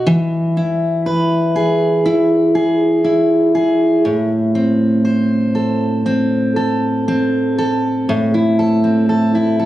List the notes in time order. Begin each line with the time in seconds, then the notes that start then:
Already playing: D#4 F#4 B4
0.07 E3
0.57 E4
1.06 B4
1.56 G#4
2.06 E4
2.55 G#4
3.04 E4
3.55 G#4
4.05 A2
4.55 C4
5.05 C5
5.55 A4
6.06 C4
6.56 A4
7.08 C4
7.58 A4
8.09 A2
8.34 E4
8.59 A4
8.84 C4
9.09 A4
9.35 E4
9.59 A4